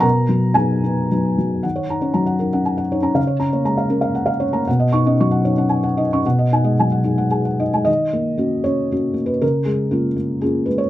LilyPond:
<<
  \new Staff \with { instrumentName = "Felt piano" } { \time 3/4 \key ees \minor \tempo 4 = 117 << { bes'4 aes'4 r4 | ges''16 des''16 bes''16 des''16 bes''16 ges''16 bes'16 ges''16 aes''16 ges''16 des''16 bes''16 | f''16 des''16 bes''16 des''16 bes''16 f''16 bes'16 f''16 ges''16 f''16 des''16 bes''16 | fis''16 dis''16 cis'''16 dis''16 cis'''16 fis''16 cis''16 fis''16 aes''16 fis''16 dis''16 cis'''16 |
ges''16 ees''16 aes''16 ees''16 aes''16 ges''16 aes'16 ges''16 aes''16 ges''16 ees''16 aes''16 | r2. | r2. | } \\ { bes''4 aes''4 r4 | r2. | r2. | r2. |
r2 aes'4 | ees''4. des''4~ des''16 ces''16 | bes'8 aes'4 r8 aes'8 ces''16 des''16 | } >> }
  \new Staff \with { instrumentName = "Felt piano" } { \time 3/4 \key ees \minor ces8 ges8 <ges ces' ees'>8 ces'8 <ges ces' ees'>8 ges8 | ees8 ees'16 des'16 ges8 ees'16 des'8. ees'16 des'16 | des8 des'16 bes16 aes8 des'16 bes8. des'16 bes16 | b,8 dis'16 cis'16 fis8 dis'16 cis'8. dis'16 cis'16 |
ces8 ees'16 aes16 ges8 ees'16 aes8. ees'16 aes16 | ees8 bes8 <bes des' ges'>8 des'8 <bes des' ges'>8 bes8 | des8 aes8 <bes des' f'>8 bes8 <bes des' f'>8 aes8 | }
>>